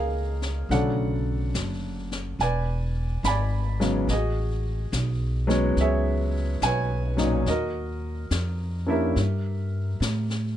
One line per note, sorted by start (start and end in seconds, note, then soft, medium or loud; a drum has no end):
0.00 0.67 C#2 medium
0.00 0.72 G#4 medium
0.00 0.72 A#4 medium
0.00 0.72 D#5 medium
0.00 0.74 F5 medium
0.42 snare soft
0.69 1.51 B1 medium
0.69 1.21 C#3 medium
0.69 1.21 D3 soft
0.69 1.21 F#3 soft
0.69 1.21 A3 soft
0.69 2.45 F#5 medium
0.69 brush sweep soft
0.69 snare soft
0.73 2.37 A4 medium
0.73 2.37 D5 soft
1.54 2.36 F#1 medium
1.54 snare soft
1.54 hi-hat pedal soft
2.12 snare soft
2.39 3.21 E1 medium
2.39 4.06 B4 medium
2.39 3.26 D5 medium
2.39 3.26 G#5 medium
2.39 brush sweep soft
2.39 snare soft
3.23 4.05 G#1 medium
3.23 4.11 B5 medium
3.23 snare medium
3.23 hi-hat pedal medium
3.27 4.06 D5 medium
3.27 4.06 G#5 medium
3.80 4.06 C#3 medium
3.80 4.05 F#3 medium
3.80 4.05 G#3 soft
3.80 4.06 B3 soft
3.80 snare soft
4.08 4.90 A1 medium
4.08 5.46 D#5 medium
4.08 brush sweep soft
4.08 snare soft
4.13 5.75 F#4 soft
4.13 5.76 G#4 soft
4.92 5.74 B1 medium
4.92 snare soft
4.92 hi-hat pedal soft
5.47 5.73 F#3 medium
5.47 5.74 G#3 medium
5.47 5.74 B3 medium
5.47 5.74 C#4 medium
5.47 snare soft
5.76 6.59 C#2 medium
5.76 brush sweep soft
5.76 snare soft
5.81 7.45 G#4 medium
5.81 6.64 C#5 soft
5.81 6.66 E5 medium
6.61 7.44 B1 medium
6.61 7.44 B4 medium
6.61 7.44 C#5 medium
6.61 7.43 G#5 medium
6.61 snare soft
6.61 hi-hat pedal soft
7.17 7.43 A#2 medium
7.17 7.43 F#3 medium
7.17 7.43 C#4 medium
7.17 7.44 D#4 medium
7.17 snare soft
7.46 8.28 D#2 medium
7.46 9.14 F#4 soft
7.46 8.90 A#4 medium
7.46 8.93 D#5 medium
7.46 brush sweep soft
7.46 snare soft
8.30 9.13 F2 medium
8.30 snare soft
8.30 hi-hat pedal soft
8.86 9.13 A#3 soft
8.86 9.13 C#4 soft
8.86 9.13 D4 soft
8.86 9.14 E4 medium
8.86 9.98 E5 medium
8.92 10.56 G4 soft
8.92 10.56 A#4 soft
9.16 9.98 G2 medium
9.16 brush sweep soft
9.16 snare soft
10.00 10.57 A2 medium
10.00 snare medium
10.00 hi-hat pedal soft
10.30 snare soft